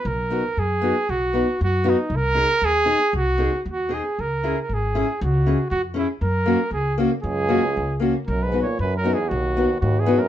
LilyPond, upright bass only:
\new Staff \with { instrumentName = "Upright bass" } { \clef bass \time 2/4 \key b \major \tempo 4 = 117 b,,4 fis,4 | b,,4 fis,4 | bis,,4 dis,4 | bis,,4 dis,4 |
cis,4 gis,,4 | cis,4 eis,4 | fis,4 cis,4 | fis,4 cis,4 |
b,,4 fis,4 | b,,4 gis,4 | }